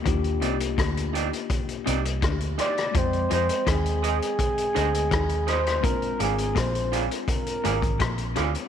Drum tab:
HH |xxxxxxxxxxxxxxxx|xxxxxxxxxxxxxxxx|xxxxxxxxxxxxxxxx|
SD |----r-------r-rr|----r-------r-rr|----r-------r-r-|
BD |o---o---o---o---|o---o---o---o---|o---o---o--oo---|